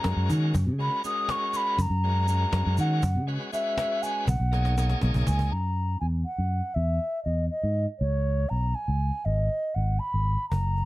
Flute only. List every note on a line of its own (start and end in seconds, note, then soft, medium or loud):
0.00 0.30 A#5 medium
0.81 1.04 B5 medium
1.05 1.32 D#6 medium
1.31 1.58 C#6 medium
1.57 1.83 B5 loud
1.82 2.80 A#5 loud
2.80 3.26 F#5 medium
3.53 4.04 E5 medium
4.03 4.28 G#5 loud
4.29 4.99 F#5 medium
5.27 5.53 G#5 medium
5.52 6.00 A#5 medium
6.01 6.07 G#5 medium
6.25 6.76 F#5 medium
6.74 7.23 E5 medium
7.24 7.48 D#5 medium
7.50 7.86 D#5 medium
7.99 8.51 C#5 medium
8.49 8.76 A#5 medium
8.75 9.27 G#5 medium
9.25 9.76 D#5 medium
9.75 10.01 F#5 medium
9.99 10.48 B5 medium
10.49 10.85 A#5 medium